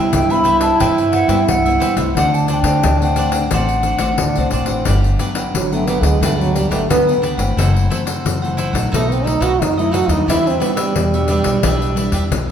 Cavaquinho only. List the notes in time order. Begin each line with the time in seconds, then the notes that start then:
Already playing: B4 C5 E5
0.30 B4 C5 E5
0.44 G4 B4 C5 E5
0.61 B4 C5 E5
0.80 G4 B4 C5 E5
1.12 G4 B4 C5 E5
1.28 G4 B4 C5 E5
1.66 B4 C5 E5
1.80 G4 B4 C5 E5
1.97 B4 C5 E5
2.17 D4 C5 D5 F#5
2.48 D4 C5 D5 F#5
2.67 C5 D5
3.02 C5 D5 F#5
3.17 D4 C5 D5 F#5
3.32 C5 D5 F#5
3.53 D4 C5 D5 F#5
3.85 D4 C5 D5 F#5
4.00 D4 C5 D5 F#5
4.37 C5 D5 F#5
4.52 D4 C5 D5 F#5
4.68 C5 D5 F#5
4.86 D4 G4 B4 F#5
5.20 D4 G4 B4 F#5
5.35 G4 B4 F#5
5.73 G4 B4 F#5
5.88 D4 G4 B4 F#5
6.04 G4 B4 F#5
6.22 D4 G4 B4 F#5
6.55 D4 G4 B4 F#5
6.71 D4 G4 B4 F#5
7.07 G4 B4 F#5
7.22 D4 G4 B4 F#5
7.37 G4 B4 F#5
7.57 E4 A4 C5 F#5
7.90 E4 A4 C5 F#5
8.05 A4 C5 F#5
8.42 A4 C5 F#5
8.57 E4 A4 C5 F#5
8.73 A4 C5 F#5
8.92 D#4 A4 B4 D#5
9.24 D#4 A4 B4 D#5
9.40 D#4 A4 B4 D#5
9.77 A4 B4 D#5
9.91 D#4 A4 B4 D#5
10.09 A4 B4 D#5
10.28 D4 G4 B4 E5
10.60 D4 G4 B4 E5
10.76 G4 B4 E5
11.14 G4 B4 E5
11.29 D4 G4 B4 E5
11.44 G4 B4 E5
11.64 D4 G4 B4 E5
11.96 D4 G4 B4 E5
12.13 D4 G4 B4 E5